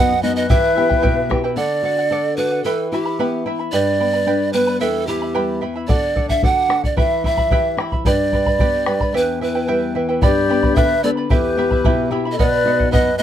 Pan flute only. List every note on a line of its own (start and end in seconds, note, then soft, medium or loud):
0.00 0.22 F#5 loud
0.23 0.35 D#5 medium
0.36 0.51 D#5 medium
0.49 1.30 E5 medium
1.57 2.34 D5 loud
2.37 2.63 B4 medium
2.64 2.90 A4 medium
2.92 3.42 G4 medium
3.72 4.50 D5 medium
4.53 4.79 B4 medium
4.81 5.09 A4 medium
5.07 5.62 G4 medium
5.88 6.26 D5 medium
6.29 6.42 E5 medium
6.45 6.86 F#5 medium
6.85 6.98 D5 medium
6.98 7.23 E5 medium
7.26 7.76 E5 medium
8.06 9.18 D5 loud
9.17 9.42 B4 medium
9.43 9.92 B4 medium
10.23 10.77 D5 medium
10.76 11.03 E5 loud
11.04 11.10 D5 medium
11.31 12.08 B4 medium
12.32 12.40 D#5 medium
12.39 12.92 D5 medium
12.92 13.18 D#5 loud
13.18 13.23 D#5 loud